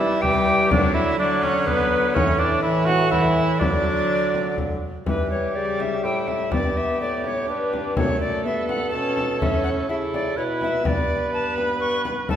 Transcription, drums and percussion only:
0.23 frame drum
0.71 frame drum
1.43 frame drum
1.67 frame drum
2.16 frame drum
2.89 frame drum
3.12 frame drum
3.61 frame drum
4.34 frame drum
4.58 frame drum
5.06 frame drum
5.80 frame drum
6.28 frame drum
6.52 frame drum
7.24 frame drum
7.74 frame drum
7.97 frame drum
8.69 frame drum
9.17 frame drum
9.42 frame drum
10.14 frame drum
10.61 frame drum
10.85 frame drum
11.58 frame drum
12.05 frame drum
12.29 frame drum

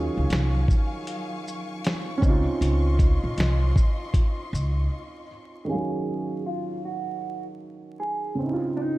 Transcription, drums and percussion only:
0.30 snare, closed hi-hat
0.68 kick, shaker
1.07 closed hi-hat
1.48 shaker
1.84 snare, closed hi-hat
2.22 kick, shaker
2.62 closed hi-hat
2.99 kick, closed hi-hat, shaker
3.38 snare, closed hi-hat
3.76 kick, shaker
4.14 kick, closed hi-hat
4.55 shaker

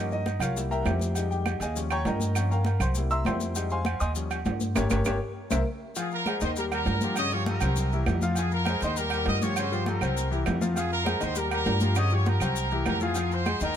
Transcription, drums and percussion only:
0.12 high conga, maracas
0.26 high conga, low timbale, low agogo, maracas
0.40 high conga, low conga, low agogo, claves, maracas
0.55 high conga, maracas
0.70 high conga, maracas
0.85 high conga, low timbale, low agogo, claves, maracas
0.99 high conga, maracas
1.15 low agogo, maracas
1.31 high conga, maracas
1.46 high conga, low timbale, low agogo, claves, maracas
1.61 high conga, low agogo, maracas
1.75 high conga, maracas
1.90 high conga, low agogo, claves, maracas
2.05 high conga, low timbale, low agogo, maracas
2.20 high conga, maracas
2.35 high conga, low agogo, claves, maracas
2.50 high conga, maracas
2.65 high conga, low timbale, low agogo, maracas
2.80 high conga, low conga, low agogo, claves, maracas
2.95 high conga, maracas
3.10 high conga, maracas
3.25 high conga, low timbale, low agogo, claves, maracas
3.40 high conga, maracas
3.55 high conga, low agogo, maracas
3.70 high conga, maracas
3.85 high conga, low timbale, low agogo, claves, maracas
4.00 high conga, low agogo, maracas
4.15 high conga, maracas
4.31 high conga, low agogo, claves, maracas
4.45 high conga, low timbale, low agogo, maracas
4.60 high conga, maracas
4.76 high conga, high timbale, claves, maracas
4.90 high conga, high timbale, claves, maracas
5.05 high conga, high timbale, claves, maracas
5.51 high conga, high timbale, claves, maracas
5.96 high conga, low agogo, maracas
6.11 high conga, maracas
6.26 high conga, low timbale, low agogo, claves, maracas
6.41 high conga, low agogo, maracas
6.56 high conga, maracas
6.70 high conga, low agogo, claves, maracas
6.85 high conga, low timbale, low agogo, maracas
7.01 high conga, maracas
7.16 high conga, low agogo, claves, maracas
7.31 high conga, maracas
7.46 high conga, low timbale, low agogo, maracas
7.61 high conga, low conga, low agogo, claves, maracas
7.76 high conga, low conga, maracas
7.92 high conga, maracas
8.06 high conga, low timbale, low agogo, claves, maracas
8.21 high conga, maracas
8.35 high conga, low agogo, maracas
8.51 high conga, maracas
8.65 high conga, low timbale, low agogo, claves, maracas
8.81 high conga, low agogo, maracas
8.96 high conga, maracas
9.10 high conga, low agogo, claves, maracas
9.26 high conga, low timbale, low agogo, maracas
9.41 high conga, maracas
9.56 low agogo, claves, maracas
9.71 high conga, maracas
9.86 high conga, low timbale, low agogo, maracas
10.01 high conga, low conga, low agogo, claves, maracas
10.17 high conga, maracas
10.32 high conga, maracas
10.46 high conga, low timbale, low agogo, claves, maracas
10.61 high conga, maracas
10.76 high conga, low agogo, maracas
10.92 high conga, maracas
11.06 high conga, low timbale, low agogo, claves, maracas
11.21 high conga, low agogo, maracas
11.35 high conga, maracas
11.51 high conga, low agogo, claves, maracas
11.66 high conga, low timbale, low agogo, maracas
11.80 high conga, maracas
11.95 low agogo, claves, maracas
12.10 high conga, maracas
12.25 high conga, low timbale, low agogo, maracas
12.40 high conga, low conga, low agogo, claves, maracas
12.56 maracas
12.71 high conga, maracas
12.86 high conga, low timbale, low agogo, claves, maracas
13.00 high conga, maracas
13.15 high conga, low agogo, maracas
13.31 high conga, maracas
13.46 high conga, low timbale, low agogo, claves, maracas
13.60 low agogo, maracas

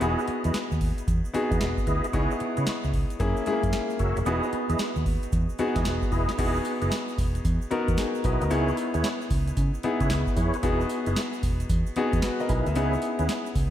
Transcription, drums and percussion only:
0.01 closed hi-hat, shaker
0.19 shaker
0.28 closed hi-hat
0.44 closed hi-hat, shaker
0.54 snare, closed hi-hat, shaker
0.71 shaker
0.81 kick, open hi-hat
0.98 closed hi-hat, shaker
1.08 kick, closed hi-hat, shaker
1.25 shaker
1.34 closed hi-hat, shaker
1.51 kick, closed hi-hat, shaker
1.61 snare, closed hi-hat, shaker
1.77 kick, shaker
1.87 kick, closed hi-hat, shaker
2.04 closed hi-hat, shaker
2.14 kick, closed hi-hat, shaker
2.31 shaker
2.40 closed hi-hat
2.57 closed hi-hat, shaker
2.67 snare, closed hi-hat, shaker
2.84 shaker
2.93 kick, open hi-hat
3.10 closed hi-hat, shaker
3.20 kick, closed hi-hat, shaker
3.37 shaker
3.46 closed hi-hat, shaker
3.63 kick, closed hi-hat, shaker
3.73 snare, closed hi-hat, shaker
3.90 shaker
3.99 kick, closed hi-hat, shaker
4.17 closed hi-hat, shaker
4.26 closed hi-hat, shaker
4.43 shaker
4.53 closed hi-hat
4.69 closed hi-hat, shaker
4.79 snare, closed hi-hat, shaker
4.96 shaker
5.06 kick, open hi-hat
5.23 closed hi-hat, shaker
5.32 kick, closed hi-hat, shaker
5.49 shaker
5.58 closed hi-hat, shaker
5.76 kick, snare, closed hi-hat, shaker
5.85 snare, closed hi-hat, shaker
6.02 kick, shaker
6.12 kick, open hi-hat, shaker
6.29 snare, closed hi-hat, shaker
6.38 kick, closed hi-hat, crash, tambourine, shaker
6.55 shaker
6.65 closed hi-hat, tambourine, shaker
6.82 closed hi-hat, shaker
6.91 snare, closed hi-hat, tambourine, shaker
7.08 shaker
7.18 kick, open hi-hat, tambourine, shaker
7.35 closed hi-hat, shaker
7.45 kick, closed hi-hat, tambourine, shaker
7.62 shaker
7.71 closed hi-hat
7.88 kick, closed hi-hat, shaker
7.97 snare, closed hi-hat, tambourine, shaker
8.15 shaker
8.24 kick, closed hi-hat, tambourine, shaker
8.41 closed hi-hat, shaker
8.51 closed hi-hat, tambourine, shaker
8.68 shaker
8.77 closed hi-hat, tambourine, shaker
8.94 closed hi-hat, shaker
9.04 snare, closed hi-hat, tambourine, shaker
9.21 shaker
9.30 kick, open hi-hat, tambourine, shaker
9.47 closed hi-hat, shaker
9.57 kick, closed hi-hat, tambourine, shaker
9.74 shaker
9.83 closed hi-hat
10.00 kick, closed hi-hat, shaker
10.10 snare, closed hi-hat, tambourine, shaker
10.27 kick, shaker
10.37 kick, closed hi-hat, tambourine, shaker
10.53 closed hi-hat, shaker
10.63 kick, closed hi-hat, tambourine, shaker
10.81 shaker
10.89 closed hi-hat, tambourine, shaker
11.06 closed hi-hat, shaker
11.16 snare, closed hi-hat, tambourine, shaker
11.33 shaker
11.43 kick, open hi-hat, tambourine, shaker
11.60 closed hi-hat, shaker
11.69 kick, closed hi-hat, tambourine, shaker
11.86 shaker
11.96 closed hi-hat
12.13 kick, closed hi-hat, shaker
12.22 snare, closed hi-hat, tambourine, shaker
12.40 shaker
12.49 kick, closed hi-hat, tambourine, shaker
12.66 closed hi-hat, shaker
12.75 closed hi-hat, tambourine, shaker
12.93 shaker
13.02 closed hi-hat, tambourine, shaker
13.19 closed hi-hat, shaker
13.29 snare, closed hi-hat, tambourine, shaker
13.46 shaker
13.55 kick, open hi-hat, tambourine, shaker

